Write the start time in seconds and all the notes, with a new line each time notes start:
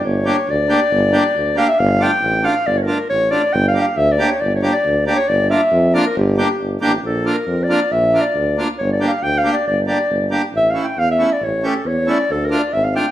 0.04 G1 C#5
0.25 A#3 D4 G4
0.48 D2 D5
0.68 A#3 D4 G4
0.91 G1
1.12 A#3 D4 G4
1.35 D2
1.56 A#3 D4 G4 F5
1.69 E5
1.79 G1 F5
1.99 A3 D4 F4 G5
2.22 A1
2.43 A3 D4 F4 F5
2.66 G1 D5
2.78 C#5
2.83 A3 A#4
2.87 D4 F4
2.97 A#4
3.10 A1 C#5
3.31 A3 D4 F4 D5
3.53 G1 G5
3.68 F5
3.74 A#3 D4 G4
3.81 F5
3.97 D2 E5
4.12 D5
4.18 A#3 D4 G4
4.28 C#5
4.41 G1 D5
4.55 C#5
4.62 A#3 D4 G4
4.73 D5
4.85 D2
5.07 A#3 D4 G4 D5
5.16 C#5
5.29 G1 D5
5.50 A#3 D4 F4 E5
5.71 F2
5.94 A#3 D4 F4 D5
6.06 A#4
6.15 G1 G4
6.37 A#3 D4 G4
6.60 G1
6.81 A1 A#3 D4 G4
7.03 A#1 A4
7.25 A#3 D4 F4
7.34 A#4
7.47 F2
7.63 D5
7.69 A#3 D4 F4
7.91 A#1 E5
8.13 A#3 D4 F4
8.21 D5
8.35 D2
8.57 A#3 D4 F4
8.78 G1 C#5
8.93 D5
9.00 A#3 D4 G4
9.08 F5
9.22 D2 G5
9.38 F5
9.43 A#3 D4 G4
9.53 D5
9.66 G1 D5
9.87 A#3 D4 G4 D5
10.09 G1
10.30 A#3 D4 G4
10.53 A1 E5
10.70 A3 F5
10.74 C#4 E4
10.84 G5
10.97 E2 F5
11.11 E5
11.18 A3 C#4 E4
11.33 D5
11.41 A1 C#5
11.63 A3 C#4 G4 A4
11.84 E2 C#5
12.06 A3 C#4 E4 D5
12.29 D2 A4
12.46 A#4
12.50 A3 D4 F4
12.59 D5
12.73 G#1 E5
12.84 F5
12.95 A3 D4 F4 G5